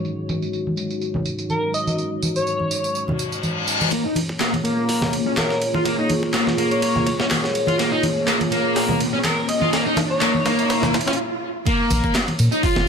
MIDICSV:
0, 0, Header, 1, 8, 480
1, 0, Start_track
1, 0, Key_signature, -5, "minor"
1, 0, Tempo, 483871
1, 50, Time_signature, 4, 2, 24, 8
1, 12779, End_track
2, 0, Start_track
2, 0, Title_t, "Digital synth lead"
2, 0, Program_c, 0, 84
2, 1486, Note_on_c, 0, 70, 89
2, 1691, Note_off_c, 0, 70, 0
2, 1727, Note_on_c, 0, 75, 87
2, 1931, Note_off_c, 0, 75, 0
2, 2338, Note_on_c, 0, 73, 92
2, 3007, Note_off_c, 0, 73, 0
2, 5325, Note_on_c, 0, 70, 91
2, 5530, Note_off_c, 0, 70, 0
2, 6654, Note_on_c, 0, 73, 96
2, 7325, Note_off_c, 0, 73, 0
2, 9167, Note_on_c, 0, 70, 95
2, 9371, Note_off_c, 0, 70, 0
2, 9410, Note_on_c, 0, 75, 93
2, 9613, Note_off_c, 0, 75, 0
2, 10019, Note_on_c, 0, 73, 96
2, 10687, Note_off_c, 0, 73, 0
2, 12779, End_track
3, 0, Start_track
3, 0, Title_t, "Analog synth pad"
3, 0, Program_c, 1, 89
3, 0, Note_on_c, 1, 56, 77
3, 0, Note_on_c, 1, 63, 73
3, 0, Note_on_c, 1, 66, 72
3, 0, Note_on_c, 1, 73, 86
3, 3846, Note_off_c, 1, 63, 0
3, 3848, Note_off_c, 1, 66, 0
3, 3848, Note_off_c, 1, 73, 0
3, 3850, Note_off_c, 1, 56, 0
3, 3888, Note_on_c, 1, 65, 72
3, 3889, Note_on_c, 1, 58, 81
3, 3889, Note_on_c, 1, 68, 74
3, 3892, Note_on_c, 1, 73, 89
3, 11049, Note_off_c, 1, 65, 0
3, 11050, Note_off_c, 1, 58, 0
3, 11050, Note_off_c, 1, 68, 0
3, 11051, Note_off_c, 1, 73, 0
3, 11572, Note_on_c, 1, 65, 77
3, 11575, Note_on_c, 1, 58, 82
3, 11576, Note_on_c, 1, 68, 76
3, 11578, Note_on_c, 1, 73, 89
3, 12779, Note_off_c, 1, 58, 0
3, 12779, Note_off_c, 1, 65, 0
3, 12779, Note_off_c, 1, 68, 0
3, 12779, Note_off_c, 1, 73, 0
3, 12779, End_track
4, 0, Start_track
4, 0, Title_t, "Distorted electric guitar"
4, 0, Program_c, 2, 30
4, 3884, Note_on_c, 2, 58, 99
4, 3981, Note_off_c, 2, 58, 0
4, 4013, Note_on_c, 2, 63, 76
4, 4121, Note_off_c, 2, 63, 0
4, 4365, Note_on_c, 2, 58, 94
4, 4461, Note_off_c, 2, 58, 0
4, 4604, Note_on_c, 2, 58, 76
4, 5076, Note_off_c, 2, 58, 0
4, 5222, Note_on_c, 2, 61, 76
4, 5268, Note_off_c, 2, 61, 0
4, 5697, Note_on_c, 2, 65, 93
4, 5777, Note_off_c, 2, 65, 0
4, 5803, Note_on_c, 2, 58, 99
4, 5900, Note_off_c, 2, 58, 0
4, 5939, Note_on_c, 2, 63, 75
4, 6044, Note_off_c, 2, 63, 0
4, 6287, Note_on_c, 2, 58, 96
4, 6382, Note_off_c, 2, 58, 0
4, 6525, Note_on_c, 2, 58, 78
4, 6997, Note_off_c, 2, 58, 0
4, 7135, Note_on_c, 2, 61, 77
4, 7185, Note_off_c, 2, 61, 0
4, 7612, Note_on_c, 2, 65, 96
4, 7695, Note_off_c, 2, 65, 0
4, 7722, Note_on_c, 2, 58, 100
4, 7820, Note_off_c, 2, 58, 0
4, 7851, Note_on_c, 2, 63, 76
4, 7960, Note_off_c, 2, 63, 0
4, 8206, Note_on_c, 2, 58, 96
4, 8302, Note_off_c, 2, 58, 0
4, 8450, Note_on_c, 2, 58, 78
4, 8919, Note_off_c, 2, 58, 0
4, 9058, Note_on_c, 2, 61, 78
4, 9106, Note_off_c, 2, 61, 0
4, 9539, Note_on_c, 2, 65, 98
4, 9618, Note_off_c, 2, 65, 0
4, 9651, Note_on_c, 2, 58, 101
4, 9744, Note_off_c, 2, 58, 0
4, 9782, Note_on_c, 2, 63, 77
4, 9885, Note_off_c, 2, 63, 0
4, 10131, Note_on_c, 2, 58, 100
4, 10224, Note_off_c, 2, 58, 0
4, 10372, Note_on_c, 2, 58, 79
4, 10840, Note_off_c, 2, 58, 0
4, 10979, Note_on_c, 2, 61, 80
4, 11027, Note_off_c, 2, 61, 0
4, 11571, Note_on_c, 2, 58, 84
4, 12040, Note_off_c, 2, 58, 0
4, 12423, Note_on_c, 2, 63, 102
4, 12520, Note_off_c, 2, 63, 0
4, 12530, Note_on_c, 2, 65, 82
4, 12779, Note_off_c, 2, 65, 0
4, 12779, End_track
5, 0, Start_track
5, 0, Title_t, "Sub bass"
5, 0, Program_c, 3, 38
5, 11814, Note_on_c, 3, 34, 103
5, 11909, Note_off_c, 3, 34, 0
5, 12293, Note_on_c, 3, 46, 86
5, 12388, Note_off_c, 3, 46, 0
5, 12531, Note_on_c, 3, 29, 43
5, 12635, Note_off_c, 3, 29, 0
5, 12664, Note_on_c, 3, 29, 78
5, 12779, Note_off_c, 3, 29, 0
5, 12779, End_track
6, 0, Start_track
6, 0, Title_t, "Reverse cymbal"
6, 0, Program_c, 4, 119
6, 2929, Note_on_c, 4, 60, 72
6, 3889, Note_off_c, 4, 60, 0
6, 12779, End_track
7, 0, Start_track
7, 0, Title_t, "Riser"
7, 0, Program_c, 5, 103
7, 3888, Note_on_c, 5, 60, 76
7, 11089, Note_off_c, 5, 60, 0
7, 12779, End_track
8, 0, Start_track
8, 0, Title_t, "Drums"
8, 47, Note_on_c, 9, 54, 30
8, 146, Note_off_c, 9, 54, 0
8, 288, Note_on_c, 9, 54, 72
8, 288, Note_on_c, 9, 63, 91
8, 387, Note_off_c, 9, 63, 0
8, 388, Note_off_c, 9, 54, 0
8, 421, Note_on_c, 9, 54, 39
8, 520, Note_off_c, 9, 54, 0
8, 529, Note_on_c, 9, 54, 30
8, 628, Note_off_c, 9, 54, 0
8, 663, Note_on_c, 9, 63, 60
8, 762, Note_off_c, 9, 63, 0
8, 767, Note_on_c, 9, 54, 70
8, 866, Note_off_c, 9, 54, 0
8, 898, Note_on_c, 9, 54, 40
8, 997, Note_off_c, 9, 54, 0
8, 1006, Note_on_c, 9, 54, 29
8, 1105, Note_off_c, 9, 54, 0
8, 1132, Note_on_c, 9, 63, 86
8, 1145, Note_on_c, 9, 64, 79
8, 1231, Note_off_c, 9, 63, 0
8, 1244, Note_off_c, 9, 64, 0
8, 1245, Note_on_c, 9, 54, 69
8, 1344, Note_off_c, 9, 54, 0
8, 1374, Note_on_c, 9, 54, 41
8, 1473, Note_off_c, 9, 54, 0
8, 1485, Note_on_c, 9, 54, 29
8, 1485, Note_on_c, 9, 63, 57
8, 1584, Note_off_c, 9, 54, 0
8, 1584, Note_off_c, 9, 63, 0
8, 1727, Note_on_c, 9, 54, 68
8, 1826, Note_off_c, 9, 54, 0
8, 1855, Note_on_c, 9, 63, 80
8, 1859, Note_on_c, 9, 54, 40
8, 1954, Note_off_c, 9, 63, 0
8, 1958, Note_off_c, 9, 54, 0
8, 1968, Note_on_c, 9, 54, 30
8, 2067, Note_off_c, 9, 54, 0
8, 2207, Note_on_c, 9, 54, 74
8, 2209, Note_on_c, 9, 63, 83
8, 2306, Note_off_c, 9, 54, 0
8, 2308, Note_off_c, 9, 63, 0
8, 2339, Note_on_c, 9, 54, 42
8, 2438, Note_off_c, 9, 54, 0
8, 2449, Note_on_c, 9, 54, 31
8, 2548, Note_off_c, 9, 54, 0
8, 2576, Note_on_c, 9, 63, 61
8, 2676, Note_off_c, 9, 63, 0
8, 2688, Note_on_c, 9, 54, 71
8, 2787, Note_off_c, 9, 54, 0
8, 2818, Note_on_c, 9, 54, 40
8, 2918, Note_off_c, 9, 54, 0
8, 2927, Note_on_c, 9, 54, 31
8, 3026, Note_off_c, 9, 54, 0
8, 3055, Note_on_c, 9, 63, 80
8, 3065, Note_on_c, 9, 64, 82
8, 3154, Note_off_c, 9, 63, 0
8, 3164, Note_off_c, 9, 64, 0
8, 3166, Note_on_c, 9, 54, 73
8, 3265, Note_off_c, 9, 54, 0
8, 3297, Note_on_c, 9, 54, 40
8, 3396, Note_off_c, 9, 54, 0
8, 3401, Note_on_c, 9, 63, 62
8, 3405, Note_on_c, 9, 54, 29
8, 3500, Note_off_c, 9, 63, 0
8, 3505, Note_off_c, 9, 54, 0
8, 3646, Note_on_c, 9, 54, 72
8, 3746, Note_off_c, 9, 54, 0
8, 3778, Note_on_c, 9, 54, 43
8, 3779, Note_on_c, 9, 63, 81
8, 3878, Note_off_c, 9, 54, 0
8, 3878, Note_off_c, 9, 63, 0
8, 3887, Note_on_c, 9, 36, 108
8, 3887, Note_on_c, 9, 51, 86
8, 3986, Note_off_c, 9, 36, 0
8, 3986, Note_off_c, 9, 51, 0
8, 4120, Note_on_c, 9, 63, 90
8, 4128, Note_on_c, 9, 51, 68
8, 4219, Note_off_c, 9, 63, 0
8, 4227, Note_off_c, 9, 51, 0
8, 4259, Note_on_c, 9, 36, 92
8, 4358, Note_off_c, 9, 36, 0
8, 4364, Note_on_c, 9, 39, 104
8, 4371, Note_on_c, 9, 38, 115
8, 4371, Note_on_c, 9, 51, 87
8, 4463, Note_off_c, 9, 39, 0
8, 4470, Note_off_c, 9, 38, 0
8, 4470, Note_off_c, 9, 51, 0
8, 4496, Note_on_c, 9, 63, 69
8, 4502, Note_on_c, 9, 51, 43
8, 4595, Note_off_c, 9, 63, 0
8, 4601, Note_off_c, 9, 51, 0
8, 4611, Note_on_c, 9, 51, 65
8, 4710, Note_off_c, 9, 51, 0
8, 4849, Note_on_c, 9, 36, 107
8, 4852, Note_on_c, 9, 46, 81
8, 4948, Note_off_c, 9, 36, 0
8, 4951, Note_off_c, 9, 46, 0
8, 4973, Note_on_c, 9, 63, 86
8, 4978, Note_on_c, 9, 64, 97
8, 4982, Note_on_c, 9, 38, 51
8, 5072, Note_off_c, 9, 63, 0
8, 5077, Note_off_c, 9, 64, 0
8, 5081, Note_off_c, 9, 38, 0
8, 5089, Note_on_c, 9, 51, 68
8, 5188, Note_off_c, 9, 51, 0
8, 5326, Note_on_c, 9, 39, 101
8, 5327, Note_on_c, 9, 63, 67
8, 5328, Note_on_c, 9, 38, 118
8, 5328, Note_on_c, 9, 51, 87
8, 5425, Note_off_c, 9, 39, 0
8, 5427, Note_off_c, 9, 63, 0
8, 5428, Note_off_c, 9, 38, 0
8, 5428, Note_off_c, 9, 51, 0
8, 5460, Note_on_c, 9, 38, 43
8, 5559, Note_off_c, 9, 38, 0
8, 5570, Note_on_c, 9, 51, 67
8, 5670, Note_off_c, 9, 51, 0
8, 5695, Note_on_c, 9, 63, 98
8, 5699, Note_on_c, 9, 36, 94
8, 5794, Note_off_c, 9, 63, 0
8, 5798, Note_off_c, 9, 36, 0
8, 5808, Note_on_c, 9, 36, 114
8, 5808, Note_on_c, 9, 51, 88
8, 5907, Note_off_c, 9, 36, 0
8, 5907, Note_off_c, 9, 51, 0
8, 6046, Note_on_c, 9, 63, 90
8, 6047, Note_on_c, 9, 51, 66
8, 6145, Note_off_c, 9, 63, 0
8, 6146, Note_off_c, 9, 51, 0
8, 6179, Note_on_c, 9, 36, 91
8, 6278, Note_off_c, 9, 36, 0
8, 6285, Note_on_c, 9, 39, 110
8, 6289, Note_on_c, 9, 38, 114
8, 6289, Note_on_c, 9, 51, 85
8, 6384, Note_off_c, 9, 39, 0
8, 6388, Note_off_c, 9, 38, 0
8, 6388, Note_off_c, 9, 51, 0
8, 6418, Note_on_c, 9, 63, 64
8, 6420, Note_on_c, 9, 38, 41
8, 6517, Note_off_c, 9, 63, 0
8, 6520, Note_off_c, 9, 38, 0
8, 6530, Note_on_c, 9, 51, 67
8, 6629, Note_off_c, 9, 51, 0
8, 6660, Note_on_c, 9, 51, 43
8, 6759, Note_off_c, 9, 51, 0
8, 6769, Note_on_c, 9, 36, 109
8, 6769, Note_on_c, 9, 51, 87
8, 6868, Note_off_c, 9, 36, 0
8, 6868, Note_off_c, 9, 51, 0
8, 6899, Note_on_c, 9, 63, 91
8, 6902, Note_on_c, 9, 64, 101
8, 6998, Note_off_c, 9, 63, 0
8, 7001, Note_off_c, 9, 64, 0
8, 7009, Note_on_c, 9, 36, 99
8, 7010, Note_on_c, 9, 51, 68
8, 7108, Note_off_c, 9, 36, 0
8, 7109, Note_off_c, 9, 51, 0
8, 7139, Note_on_c, 9, 38, 58
8, 7238, Note_off_c, 9, 38, 0
8, 7246, Note_on_c, 9, 39, 105
8, 7249, Note_on_c, 9, 38, 113
8, 7249, Note_on_c, 9, 51, 90
8, 7252, Note_on_c, 9, 63, 62
8, 7345, Note_off_c, 9, 39, 0
8, 7348, Note_off_c, 9, 38, 0
8, 7348, Note_off_c, 9, 51, 0
8, 7351, Note_off_c, 9, 63, 0
8, 7381, Note_on_c, 9, 38, 37
8, 7480, Note_off_c, 9, 38, 0
8, 7490, Note_on_c, 9, 51, 70
8, 7589, Note_off_c, 9, 51, 0
8, 7606, Note_on_c, 9, 63, 94
8, 7621, Note_on_c, 9, 51, 44
8, 7705, Note_off_c, 9, 63, 0
8, 7721, Note_off_c, 9, 51, 0
8, 7731, Note_on_c, 9, 38, 51
8, 7731, Note_on_c, 9, 51, 90
8, 7830, Note_off_c, 9, 38, 0
8, 7830, Note_off_c, 9, 51, 0
8, 7966, Note_on_c, 9, 63, 93
8, 7969, Note_on_c, 9, 51, 71
8, 8065, Note_off_c, 9, 63, 0
8, 8069, Note_off_c, 9, 51, 0
8, 8208, Note_on_c, 9, 39, 112
8, 8211, Note_on_c, 9, 38, 51
8, 8211, Note_on_c, 9, 51, 85
8, 8307, Note_off_c, 9, 39, 0
8, 8310, Note_off_c, 9, 38, 0
8, 8310, Note_off_c, 9, 51, 0
8, 8337, Note_on_c, 9, 63, 75
8, 8342, Note_on_c, 9, 51, 46
8, 8437, Note_off_c, 9, 63, 0
8, 8441, Note_off_c, 9, 51, 0
8, 8451, Note_on_c, 9, 51, 67
8, 8550, Note_off_c, 9, 51, 0
8, 8690, Note_on_c, 9, 38, 61
8, 8690, Note_on_c, 9, 46, 84
8, 8789, Note_off_c, 9, 38, 0
8, 8789, Note_off_c, 9, 46, 0
8, 8815, Note_on_c, 9, 64, 96
8, 8819, Note_on_c, 9, 63, 96
8, 8914, Note_off_c, 9, 64, 0
8, 8918, Note_off_c, 9, 63, 0
8, 8932, Note_on_c, 9, 51, 69
8, 9031, Note_off_c, 9, 51, 0
8, 9165, Note_on_c, 9, 63, 71
8, 9169, Note_on_c, 9, 39, 107
8, 9172, Note_on_c, 9, 38, 67
8, 9172, Note_on_c, 9, 51, 90
8, 9264, Note_off_c, 9, 63, 0
8, 9268, Note_off_c, 9, 39, 0
8, 9271, Note_off_c, 9, 38, 0
8, 9271, Note_off_c, 9, 51, 0
8, 9411, Note_on_c, 9, 51, 72
8, 9510, Note_off_c, 9, 51, 0
8, 9536, Note_on_c, 9, 63, 95
8, 9635, Note_off_c, 9, 63, 0
8, 9653, Note_on_c, 9, 38, 75
8, 9653, Note_on_c, 9, 51, 94
8, 9752, Note_off_c, 9, 38, 0
8, 9752, Note_off_c, 9, 51, 0
8, 9883, Note_on_c, 9, 63, 104
8, 9890, Note_on_c, 9, 38, 80
8, 9890, Note_on_c, 9, 51, 69
8, 9982, Note_off_c, 9, 63, 0
8, 9989, Note_off_c, 9, 38, 0
8, 9989, Note_off_c, 9, 51, 0
8, 10128, Note_on_c, 9, 39, 110
8, 10133, Note_on_c, 9, 38, 84
8, 10133, Note_on_c, 9, 51, 88
8, 10227, Note_off_c, 9, 39, 0
8, 10232, Note_off_c, 9, 38, 0
8, 10232, Note_off_c, 9, 51, 0
8, 10259, Note_on_c, 9, 63, 74
8, 10359, Note_off_c, 9, 63, 0
8, 10373, Note_on_c, 9, 38, 89
8, 10373, Note_on_c, 9, 51, 68
8, 10472, Note_off_c, 9, 38, 0
8, 10472, Note_off_c, 9, 51, 0
8, 10503, Note_on_c, 9, 51, 45
8, 10603, Note_off_c, 9, 51, 0
8, 10614, Note_on_c, 9, 38, 94
8, 10614, Note_on_c, 9, 51, 91
8, 10713, Note_off_c, 9, 38, 0
8, 10713, Note_off_c, 9, 51, 0
8, 10737, Note_on_c, 9, 64, 90
8, 10740, Note_on_c, 9, 63, 97
8, 10744, Note_on_c, 9, 38, 81
8, 10837, Note_off_c, 9, 64, 0
8, 10839, Note_off_c, 9, 63, 0
8, 10844, Note_off_c, 9, 38, 0
8, 10855, Note_on_c, 9, 38, 98
8, 10855, Note_on_c, 9, 51, 70
8, 10919, Note_off_c, 9, 51, 0
8, 10919, Note_on_c, 9, 51, 71
8, 10954, Note_off_c, 9, 38, 0
8, 10986, Note_off_c, 9, 51, 0
8, 10986, Note_on_c, 9, 38, 89
8, 10986, Note_on_c, 9, 51, 68
8, 11041, Note_off_c, 9, 51, 0
8, 11041, Note_on_c, 9, 51, 68
8, 11086, Note_off_c, 9, 38, 0
8, 11140, Note_off_c, 9, 51, 0
8, 11572, Note_on_c, 9, 36, 113
8, 11572, Note_on_c, 9, 51, 91
8, 11573, Note_on_c, 9, 54, 34
8, 11671, Note_off_c, 9, 36, 0
8, 11671, Note_off_c, 9, 51, 0
8, 11672, Note_off_c, 9, 54, 0
8, 11807, Note_on_c, 9, 63, 97
8, 11809, Note_on_c, 9, 54, 81
8, 11812, Note_on_c, 9, 51, 71
8, 11906, Note_off_c, 9, 63, 0
8, 11909, Note_off_c, 9, 54, 0
8, 11911, Note_off_c, 9, 51, 0
8, 11940, Note_on_c, 9, 54, 45
8, 11942, Note_on_c, 9, 36, 101
8, 12039, Note_off_c, 9, 54, 0
8, 12041, Note_off_c, 9, 36, 0
8, 12049, Note_on_c, 9, 39, 111
8, 12049, Note_on_c, 9, 54, 34
8, 12050, Note_on_c, 9, 38, 116
8, 12050, Note_on_c, 9, 51, 89
8, 12148, Note_off_c, 9, 39, 0
8, 12148, Note_off_c, 9, 54, 0
8, 12149, Note_off_c, 9, 38, 0
8, 12149, Note_off_c, 9, 51, 0
8, 12178, Note_on_c, 9, 63, 66
8, 12182, Note_on_c, 9, 51, 46
8, 12277, Note_off_c, 9, 63, 0
8, 12281, Note_off_c, 9, 51, 0
8, 12289, Note_on_c, 9, 54, 77
8, 12290, Note_on_c, 9, 51, 68
8, 12388, Note_off_c, 9, 54, 0
8, 12390, Note_off_c, 9, 51, 0
8, 12420, Note_on_c, 9, 54, 44
8, 12519, Note_off_c, 9, 54, 0
8, 12531, Note_on_c, 9, 36, 114
8, 12531, Note_on_c, 9, 54, 33
8, 12532, Note_on_c, 9, 46, 82
8, 12630, Note_off_c, 9, 36, 0
8, 12630, Note_off_c, 9, 54, 0
8, 12631, Note_off_c, 9, 46, 0
8, 12658, Note_on_c, 9, 63, 97
8, 12661, Note_on_c, 9, 38, 55
8, 12666, Note_on_c, 9, 64, 103
8, 12757, Note_off_c, 9, 63, 0
8, 12760, Note_off_c, 9, 38, 0
8, 12766, Note_off_c, 9, 64, 0
8, 12779, End_track
0, 0, End_of_file